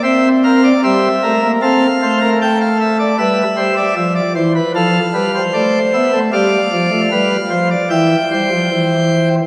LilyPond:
<<
  \new Staff \with { instrumentName = "Pipe organ" } { \time 4/4 \key c \mixolydian \tempo 4 = 76 << { e''8 f''8 e''4 f''4 g''16 f''16 e''16 d''16 | e''2 f''4 d''8 e''8 | f''2 g''2 | } \\ { c''8 bes'16 d''16 c''8 bes'8 a'8 c''16 bes'16 a'4 | b'8 c''16 d''16 e''16 d''16 c''16 b'16 a'8 b'16 c''4~ c''16 | d''4 b'8 c''16 d''16 e''8 c''4. | } >> }
  \new Staff \with { instrumentName = "Pipe organ" } { \clef bass \time 4/4 \key c \mixolydian c'4 g8 a16 bes16 c'8 a4. | g8 g8 f8 e8 f8 g8 a8 b16 a16 | g8 f16 a16 g8 f8 e8 g16 f16 e4 | }
>>